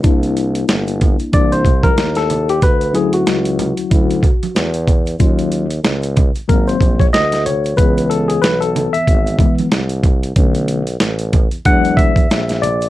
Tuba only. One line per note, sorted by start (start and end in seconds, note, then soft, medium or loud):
0.04 0.66 C2 medium
0.68 1.17 G1 medium
1.19 1.25 C2 soft
1.33 2.00 C2 loud
1.98 2.59 D#2 medium
2.62 3.24 D2 loud
3.27 3.75 C#2 medium
3.78 3.83 D2 soft
3.91 4.28 D2 medium
4.56 5.17 E2 loud
5.20 5.82 D#2 loud
5.84 6.33 C#2 loud
6.35 6.41 G#1 soft
6.49 6.80 G#1 loud
6.80 7.12 A#1 medium
7.13 7.75 D2 loud
7.78 8.40 C#2 loud
8.42 8.91 B1 medium
8.93 8.99 G#1 soft
9.07 9.44 G#1 loud
9.72 10.33 C2 medium
10.36 10.98 B1 loud
11.00 11.49 A1 loud
11.52 11.58 E2 soft
11.66 12.27 E2 loud
12.30 12.89 A#1 loud